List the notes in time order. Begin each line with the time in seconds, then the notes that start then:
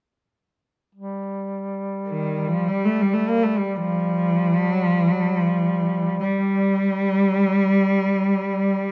0.95 G3
2.08 D#3
2.48 F3
2.68 G3
2.85 A3
3.02 G3
3.14 A3
3.29 A#3
3.43 A3
3.58 G3
3.77 F3
4.64 F#3
4.87 F3
5.13 F#3
5.37 F3
6.20 G3